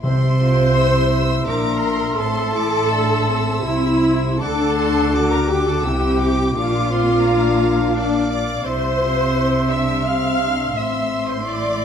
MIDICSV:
0, 0, Header, 1, 10, 480
1, 0, Start_track
1, 0, Tempo, 718563
1, 24, Time_signature, 3, 2, 24, 8
1, 1944, Tempo, 743494
1, 3384, Tempo, 700935
1, 7977, End_track
2, 0, Start_track
2, 0, Title_t, "Violin section"
2, 0, Program_c, 0, 48
2, 32, Note_on_c, 0, 84, 78
2, 488, Note_off_c, 0, 84, 0
2, 514, Note_on_c, 0, 88, 76
2, 748, Note_off_c, 0, 88, 0
2, 755, Note_on_c, 0, 88, 81
2, 981, Note_off_c, 0, 88, 0
2, 986, Note_on_c, 0, 86, 79
2, 1213, Note_on_c, 0, 84, 79
2, 1216, Note_off_c, 0, 86, 0
2, 1445, Note_off_c, 0, 84, 0
2, 1453, Note_on_c, 0, 84, 83
2, 1693, Note_off_c, 0, 84, 0
2, 1702, Note_on_c, 0, 86, 75
2, 1944, Note_off_c, 0, 86, 0
2, 1944, Note_on_c, 0, 88, 78
2, 2912, Note_off_c, 0, 88, 0
2, 2918, Note_on_c, 0, 86, 73
2, 3149, Note_off_c, 0, 86, 0
2, 3155, Note_on_c, 0, 84, 78
2, 3381, Note_off_c, 0, 84, 0
2, 3386, Note_on_c, 0, 86, 79
2, 3872, Note_off_c, 0, 86, 0
2, 3877, Note_on_c, 0, 88, 79
2, 4107, Note_on_c, 0, 86, 80
2, 4117, Note_off_c, 0, 88, 0
2, 4349, Note_off_c, 0, 86, 0
2, 4362, Note_on_c, 0, 86, 80
2, 4596, Note_off_c, 0, 86, 0
2, 4598, Note_on_c, 0, 84, 80
2, 4828, Note_on_c, 0, 82, 81
2, 4836, Note_off_c, 0, 84, 0
2, 5311, Note_off_c, 0, 82, 0
2, 5314, Note_on_c, 0, 86, 75
2, 5784, Note_off_c, 0, 86, 0
2, 5796, Note_on_c, 0, 84, 77
2, 7977, Note_off_c, 0, 84, 0
2, 7977, End_track
3, 0, Start_track
3, 0, Title_t, "Flute"
3, 0, Program_c, 1, 73
3, 21, Note_on_c, 1, 84, 90
3, 2909, Note_on_c, 1, 86, 89
3, 2919, Note_off_c, 1, 84, 0
3, 5597, Note_off_c, 1, 86, 0
3, 5803, Note_on_c, 1, 84, 87
3, 7212, Note_off_c, 1, 84, 0
3, 7237, Note_on_c, 1, 84, 76
3, 7977, Note_off_c, 1, 84, 0
3, 7977, End_track
4, 0, Start_track
4, 0, Title_t, "Violin section"
4, 0, Program_c, 2, 48
4, 17, Note_on_c, 2, 84, 106
4, 952, Note_off_c, 2, 84, 0
4, 991, Note_on_c, 2, 82, 95
4, 1463, Note_off_c, 2, 82, 0
4, 1463, Note_on_c, 2, 81, 106
4, 2399, Note_off_c, 2, 81, 0
4, 2415, Note_on_c, 2, 76, 92
4, 2895, Note_on_c, 2, 81, 108
4, 2910, Note_off_c, 2, 76, 0
4, 3484, Note_off_c, 2, 81, 0
4, 3511, Note_on_c, 2, 82, 85
4, 3630, Note_off_c, 2, 82, 0
4, 3631, Note_on_c, 2, 79, 89
4, 3751, Note_off_c, 2, 79, 0
4, 3759, Note_on_c, 2, 81, 83
4, 3873, Note_on_c, 2, 79, 98
4, 3875, Note_off_c, 2, 81, 0
4, 4360, Note_off_c, 2, 79, 0
4, 4363, Note_on_c, 2, 77, 102
4, 5299, Note_off_c, 2, 77, 0
4, 5324, Note_on_c, 2, 74, 87
4, 5551, Note_on_c, 2, 86, 90
4, 5559, Note_off_c, 2, 74, 0
4, 5783, Note_on_c, 2, 84, 97
4, 5792, Note_off_c, 2, 86, 0
4, 6506, Note_off_c, 2, 84, 0
4, 6515, Note_on_c, 2, 88, 93
4, 6755, Note_off_c, 2, 88, 0
4, 6757, Note_on_c, 2, 89, 99
4, 7236, Note_off_c, 2, 89, 0
4, 7241, Note_on_c, 2, 88, 90
4, 7585, Note_off_c, 2, 88, 0
4, 7593, Note_on_c, 2, 84, 75
4, 7702, Note_on_c, 2, 86, 90
4, 7708, Note_off_c, 2, 84, 0
4, 7977, Note_off_c, 2, 86, 0
4, 7977, End_track
5, 0, Start_track
5, 0, Title_t, "Oboe"
5, 0, Program_c, 3, 68
5, 26, Note_on_c, 3, 76, 84
5, 2886, Note_off_c, 3, 76, 0
5, 2922, Note_on_c, 3, 78, 80
5, 4149, Note_off_c, 3, 78, 0
5, 4369, Note_on_c, 3, 77, 83
5, 5772, Note_off_c, 3, 77, 0
5, 5794, Note_on_c, 3, 76, 87
5, 7207, Note_off_c, 3, 76, 0
5, 7233, Note_on_c, 3, 76, 79
5, 7977, Note_off_c, 3, 76, 0
5, 7977, End_track
6, 0, Start_track
6, 0, Title_t, "Viola section"
6, 0, Program_c, 4, 48
6, 19, Note_on_c, 4, 72, 114
6, 952, Note_off_c, 4, 72, 0
6, 978, Note_on_c, 4, 70, 107
6, 1447, Note_off_c, 4, 70, 0
6, 1450, Note_on_c, 4, 69, 122
6, 2405, Note_on_c, 4, 64, 114
6, 2412, Note_off_c, 4, 69, 0
6, 2901, Note_on_c, 4, 69, 120
6, 2905, Note_off_c, 4, 64, 0
6, 3487, Note_off_c, 4, 69, 0
6, 3502, Note_on_c, 4, 70, 100
6, 3616, Note_on_c, 4, 67, 103
6, 3626, Note_off_c, 4, 70, 0
6, 3743, Note_off_c, 4, 67, 0
6, 3747, Note_on_c, 4, 69, 99
6, 3863, Note_on_c, 4, 67, 110
6, 3869, Note_off_c, 4, 69, 0
6, 4345, Note_on_c, 4, 65, 122
6, 4354, Note_off_c, 4, 67, 0
6, 5309, Note_off_c, 4, 65, 0
6, 5314, Note_on_c, 4, 62, 101
6, 5553, Note_on_c, 4, 74, 96
6, 5555, Note_off_c, 4, 62, 0
6, 5787, Note_on_c, 4, 72, 120
6, 5788, Note_off_c, 4, 74, 0
6, 6506, Note_on_c, 4, 76, 103
6, 6508, Note_off_c, 4, 72, 0
6, 6751, Note_off_c, 4, 76, 0
6, 6751, Note_on_c, 4, 77, 112
6, 7233, Note_off_c, 4, 77, 0
6, 7233, Note_on_c, 4, 76, 92
6, 7588, Note_off_c, 4, 76, 0
6, 7592, Note_on_c, 4, 72, 79
6, 7699, Note_on_c, 4, 74, 96
6, 7708, Note_off_c, 4, 72, 0
6, 7977, Note_off_c, 4, 74, 0
6, 7977, End_track
7, 0, Start_track
7, 0, Title_t, "French horn section"
7, 0, Program_c, 5, 60
7, 26, Note_on_c, 5, 67, 90
7, 254, Note_off_c, 5, 67, 0
7, 282, Note_on_c, 5, 65, 91
7, 517, Note_off_c, 5, 65, 0
7, 519, Note_on_c, 5, 64, 93
7, 982, Note_on_c, 5, 62, 81
7, 986, Note_off_c, 5, 64, 0
7, 1454, Note_on_c, 5, 60, 81
7, 1459, Note_off_c, 5, 62, 0
7, 1694, Note_off_c, 5, 60, 0
7, 1704, Note_on_c, 5, 64, 84
7, 1940, Note_off_c, 5, 64, 0
7, 1952, Note_on_c, 5, 62, 89
7, 2183, Note_off_c, 5, 62, 0
7, 2184, Note_on_c, 5, 60, 77
7, 2419, Note_off_c, 5, 60, 0
7, 2427, Note_on_c, 5, 60, 85
7, 2901, Note_on_c, 5, 62, 90
7, 2906, Note_off_c, 5, 60, 0
7, 3369, Note_off_c, 5, 62, 0
7, 3376, Note_on_c, 5, 66, 101
7, 3860, Note_on_c, 5, 64, 85
7, 3866, Note_off_c, 5, 66, 0
7, 4348, Note_on_c, 5, 62, 90
7, 4353, Note_off_c, 5, 64, 0
7, 4588, Note_on_c, 5, 60, 83
7, 4594, Note_off_c, 5, 62, 0
7, 4830, Note_on_c, 5, 62, 97
7, 4831, Note_off_c, 5, 60, 0
7, 5681, Note_off_c, 5, 62, 0
7, 5797, Note_on_c, 5, 64, 81
7, 6029, Note_off_c, 5, 64, 0
7, 6034, Note_on_c, 5, 65, 82
7, 6266, Note_on_c, 5, 64, 79
7, 6267, Note_off_c, 5, 65, 0
7, 6501, Note_on_c, 5, 62, 67
7, 6504, Note_off_c, 5, 64, 0
7, 6744, Note_off_c, 5, 62, 0
7, 6761, Note_on_c, 5, 60, 74
7, 6990, Note_on_c, 5, 62, 77
7, 6998, Note_off_c, 5, 60, 0
7, 7232, Note_off_c, 5, 62, 0
7, 7237, Note_on_c, 5, 60, 69
7, 7698, Note_on_c, 5, 64, 74
7, 7707, Note_off_c, 5, 60, 0
7, 7977, Note_off_c, 5, 64, 0
7, 7977, End_track
8, 0, Start_track
8, 0, Title_t, "Cello section"
8, 0, Program_c, 6, 48
8, 25, Note_on_c, 6, 48, 86
8, 955, Note_off_c, 6, 48, 0
8, 979, Note_on_c, 6, 46, 78
8, 1449, Note_on_c, 6, 45, 82
8, 1458, Note_off_c, 6, 46, 0
8, 2392, Note_off_c, 6, 45, 0
8, 2411, Note_on_c, 6, 48, 78
8, 2899, Note_off_c, 6, 48, 0
8, 2902, Note_on_c, 6, 50, 89
8, 3861, Note_on_c, 6, 48, 87
8, 3865, Note_off_c, 6, 50, 0
8, 4349, Note_on_c, 6, 46, 91
8, 4353, Note_off_c, 6, 48, 0
8, 5762, Note_off_c, 6, 46, 0
8, 5789, Note_on_c, 6, 48, 80
8, 7205, Note_off_c, 6, 48, 0
8, 7233, Note_on_c, 6, 45, 72
8, 7977, Note_off_c, 6, 45, 0
8, 7977, End_track
9, 0, Start_track
9, 0, Title_t, "Timpani"
9, 0, Program_c, 7, 47
9, 23, Note_on_c, 7, 48, 93
9, 719, Note_off_c, 7, 48, 0
9, 7977, End_track
10, 0, Start_track
10, 0, Title_t, "Double bass section"
10, 0, Program_c, 8, 48
10, 31, Note_on_c, 8, 36, 84
10, 958, Note_off_c, 8, 36, 0
10, 991, Note_on_c, 8, 34, 80
10, 1462, Note_on_c, 8, 33, 80
10, 1464, Note_off_c, 8, 34, 0
10, 2399, Note_off_c, 8, 33, 0
10, 2413, Note_on_c, 8, 36, 73
10, 2900, Note_off_c, 8, 36, 0
10, 2914, Note_on_c, 8, 38, 87
10, 3872, Note_off_c, 8, 38, 0
10, 3872, Note_on_c, 8, 36, 77
10, 4359, Note_off_c, 8, 36, 0
10, 4362, Note_on_c, 8, 34, 85
10, 5769, Note_off_c, 8, 34, 0
10, 5797, Note_on_c, 8, 36, 75
10, 7209, Note_off_c, 8, 36, 0
10, 7244, Note_on_c, 8, 33, 66
10, 7977, Note_off_c, 8, 33, 0
10, 7977, End_track
0, 0, End_of_file